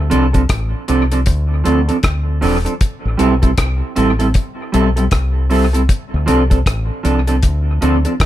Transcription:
Already playing: D2
0.10 C2 F3 C4 D4 A4, closed hi-hat
0.33 F3 C4 D4 A4, kick, closed hi-hat
0.49 A1, kick, cross-stick, closed hi-hat
0.88 C2 F3 C4 D4 A4, closed hi-hat
1.12 F3 C4 D4 A4, closed hi-hat
1.26 D2, kick, closed hi-hat
1.64 D2 F3 C4 D4 A4, closed hi-hat
1.88 F3 C4 D4 A4, closed hi-hat
2.03 D2, kick, cross-stick, closed hi-hat
2.41 E1 F3 C4 D4 A4, open hi-hat
2.65 F3 C4 D4 A4, closed hi-hat
2.81 kick, closed hi-hat
3.05 A1
3.17 B1 G3 C4 E4 A4, closed hi-hat
3.42 G3 C4 E4 A4, kick, closed hi-hat
3.58 C2, kick, cross-stick, closed hi-hat
3.96 A1 G3 C4 E4 A4, closed hi-hat
4.19 G3 C4 E4 A4, closed hi-hat
4.34 kick, closed hi-hat
4.72 B1 G3 C4 E4 A4, closed hi-hat
4.96 G3 C4 E4 A4, closed hi-hat
5.11 C2, kick, cross-stick, closed hi-hat
5.50 G3 C4 E4 A4, open hi-hat
5.73 G3 C4 E4 A4, closed hi-hat
5.89 kick, closed hi-hat
6.14 D2
6.26 C2 F3 C4 D4 A4, closed hi-hat
6.50 F3 C4 D4 A4, kick, closed hi-hat
6.66 A1, kick, cross-stick, closed hi-hat
7.03 C2 F3 C4 D4 A4, closed hi-hat
7.27 F3 C4 D4 A4, closed hi-hat
7.43 D2, kick, closed hi-hat
7.81 D2 F3 C4 D4 A4, closed hi-hat
8.05 F3 C4 D4 A4, closed hi-hat
8.20 D2, kick, cross-stick, closed hi-hat

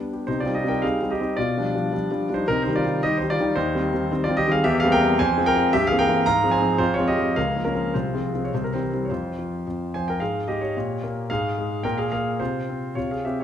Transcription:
Already playing: G3 B3
0.00 D4
0.13 G4
0.27 C3 D#4 C5
0.40 F4 D5
0.46 G3 C4 D#4
0.54 G4 D#5
0.64 G3 C4 D#4
0.68 A#4 G5
0.82 G3 C4 D#4 G#4 F5
1.02 G3 C4 D#4
1.10 G4 D#5
1.20 G3 C4 D#4
1.37 B2 F4 D5
1.57 F3 G3 D4
1.75 F3 G3 D4
1.93 F3 G3 D4
2.11 F3 G3 D4
2.29 F3 G3 D4
2.34 D#4 C5
2.48 C3 D#4 A#4
2.63 D#4 C5
2.68 D#3 G3 D#4
2.76 F4 D5
2.85 D#3 G3 D#4
3.03 D#3 G3 D#4 G4 D#5
3.17 D#4 C5
3.22 D#3 G3 D#4
3.30 F4 D5
3.40 D#3 G3 D#4
3.56 D#2 D#4 C5
3.75 D#3 G3 C4
3.93 D#3 G3 C4
4.11 D#3 G3 C4
4.24 F4 D5
4.29 D#3 G3 C4
4.37 G4 D#5
4.47 D#3 G3 C4
4.51 G#4 F5
4.64 E2 G4 E5
4.80 G#4 F5
4.84 G3 A#3 C4
4.92 A#4 G5
5.02 G3 A#3 C4
5.19 F2 C5 G#5
5.38 F3 G#3 C4
5.46 A#4 G5
5.56 F3 G#3 C4
5.73 G2 G4 E5
5.87 G#4 F5
5.91 E3 A#3 C4
5.99 A#4 G5
6.08 E3 A#3 C4
6.26 G#2 F5 A#5
6.44 F3 G#3 C4
6.51 C5 G#5
6.61 F3 G#3 C4
6.78 F2 F4 C5
6.94 F4 C#5
6.99 F3 G#3 C4
7.08 G4 D#5
7.18 F3 G#3 C4
7.36 C#2 A#4 F5
7.56 F3 A#3
7.65 C#4 A#4
7.75 F3 A#3
7.94 C2 F4 C5
8.14 F3 G#3 C4
8.34 F3 G#3 C4
8.44 C#5
8.54 C2 C5
8.64 A#4
8.74 E3 G3 C4 C5
8.93 E3 G3 C4
9.05 C#5
9.10 F2 F4 C5
9.39 F3
9.67 F2
9.94 F3 C5 G#5
10.08 A#4 G5
10.20 G#2 G#4 F5
10.48 G#3 G4 D#5
10.61 G4 C#5
10.77 A#2
11.03 A#3
11.30 G#2 G#4 F5
11.58 G#3
11.83 A#2 A#4 G5
11.98 G#4 F5
12.12 A#3 G#4 F5
12.40 C3 F4 C5
12.69 C4
12.95 C3 F4 C#5
13.11 G#4 F5
13.25 C4 G4 E5
13.40 C#5

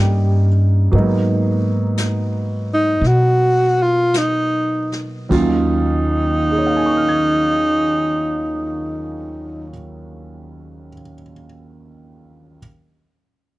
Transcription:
Already playing: G2 G3 A#3 C#4 D#4 G4
0.92 G#2 F#3 A#3 B3, brush sweep
0.96 D#4
1.98 brush sweep, snare, hi-hat pedal
2.74 D#4
3.01 B2, brush sweep, snare
3.07 F#4
3.83 F4
4.14 D#4, brush sweep, snare, hi-hat pedal
4.92 snare
5.29 D#2 D#3 F#3 C#4 F4, kick, ride
5.35 D#4
6.51 G#4
6.58 C#5
6.67 F5
6.76 G#5
6.86 C#6
6.97 F6
7.09 G#6

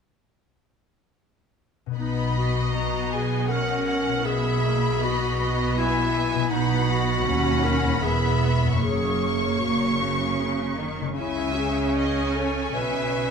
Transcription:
1.86 B2 B3
1.91 D#4 B4
1.96 B1 B2 B3 D#4 D#5 B5
2.37 F#4
2.73 B3 A#5
3.12 G#4 G#5
3.49 C#4 A#4 F#5
3.87 F#5
4.08 B2 B3
4.16 E4
4.21 B4
4.25 B1 B2 B3 G#4 E5 B5
4.62 A#3
5.01 B3 F#4 D#5
5.40 D#5
5.77 E4 E5 G#5
6.14 G#5
6.35 B2
6.40 B3
6.44 D#4
6.49 B1 B2 B3 D#4 B4 B5
6.53 F#5
6.90 F#4
7.25 D#2 C#4 B5
7.64 A#4
7.84 E2
7.89 B3
7.94 E4 B4
8.01 E1 E2 B3 G#4 E5
8.62 F#2
8.67 A#3
8.71 C#4
8.76 F#4 C#5
8.80 F#1 F#2 A#3 G#4 C#6
9.59 A#2 F#4
10.00 C#3
10.79 D#3
11.01 C#3
11.05 G#3
11.10 C#4
11.14 C#4 E4
11.18 C#2 C#3 E4 E5 G#5
11.57 G#4
11.97 D#5 G#5
12.36 A4 C#5
12.74 B1 B2 B4 E5

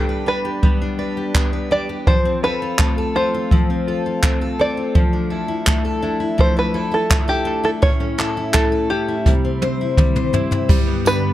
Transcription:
Already playing: G3 B3 D4 G4 A4
0.09 B4
0.26 D4 B4
0.45 G4
0.63 G3 B3, kick
0.82 D4
0.99 D4 B4
1.17 G4
1.35 B3 D4, kick, clap
1.53 B4
1.71 D4 G4 D5
1.89 G4
2.07 F3 C5, kick
2.25 C4
2.43 F4 A4 B4
2.62 F4
2.79 A3 A4, kick, clap
2.98 A4
3.15 C4 F4 C5
3.34 F4
3.51 F3 C4, kick
3.70 C4
3.88 F4 A4
4.06 F4
4.23 A3 C4, kick, clap
4.41 A4
4.59 C4 A4 D5
4.77 F4
4.95 F3, kick
5.13 D4
5.30 E4 A4
5.48 E4
5.66 A3 A4, kick, clap
5.85 A4
6.02 D4 E4
6.20 E4
6.38 F3 A3 C5, kick
6.56 D4 B4
6.74 E4 A4
6.91 E4 A4
7.10 A3, kick, clap
7.28 G4 A4
7.45 D4 A4
7.63 E4 A4
7.82 A2 C#4 C#5, kick
8.00 C#4
8.18 E4 A4, clap
8.37 E4
8.54 A3 A4, kick, clap
8.72 A4
8.90 C#4 E4 G4
9.08 E4
9.26 C3 G3, kick, snare
9.45 C4
9.62 C4 C5, high tom
9.81 E4
9.97 G3, kick, mid tom
10.16 C5, mid tom
10.33 C4 E4, floor tom
10.51 E4, floor tom
10.69 G2 D3 G3 B3, kick, crash
10.87 B3
11.05 D4 G4 B4, tambourine
11.23 B3

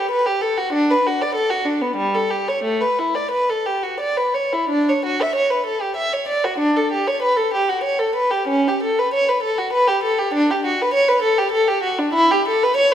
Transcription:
Already playing: G4
0.11 B4
0.26 G4
0.41 A4
0.57 F#4
0.73 D4
0.90 B4
1.07 F#4
1.22 D5
1.35 A4
1.50 F#4
1.65 D4
1.82 B3
1.96 G3
2.15 A4
2.30 G4
2.48 C#5
2.64 A3
2.81 B4
2.99 E4
3.15 D5
3.31 B4
3.50 A4
3.66 G4
3.83 F#4
4.00 D5
4.17 B4
4.34 C#5
4.53 E4
4.69 D4
4.89 C#5
5.06 F#4
5.22 E5
5.36 C#5
5.50 B4
5.66 A4
5.82 G4
5.96 E5
6.13 C#5
6.28 D5
6.44 F#4
6.59 D4
6.77 A4
6.92 G4
7.07 C#5
7.22 B4
7.37 A4
7.54 G4
7.69 F#4
7.84 C#5
7.99 A4
8.15 B4
8.31 G4
8.48 C#4
8.68 G4
8.83 A4
8.99 B4
9.14 C#5
9.29 B4
9.43 A4
9.58 F#4
9.73 B4
9.88 G4
10.03 A4
10.18 G4
10.34 D4
10.50 G4
10.65 F#4
10.82 B4
10.94 C#5
11.08 B4
11.22 A4
11.38 G4
11.51 A4
11.67 G4
11.83 F#4
11.99 D4
12.14 E4
12.31 G4
12.48 A4
12.63 B4
12.76 C#5

